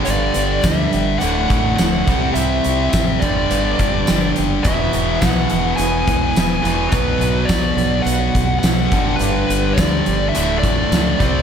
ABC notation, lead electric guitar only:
X:1
M:4/4
L:1/8
Q:1/4=105
K:Glyd
V:1 name="Lead electric guitar"
d2 e2 f2 f2 | e2 e d4 z | e2 f2 ^g2 g2 | B2 d2 f2 f2 |
B2 d2 e d3 |]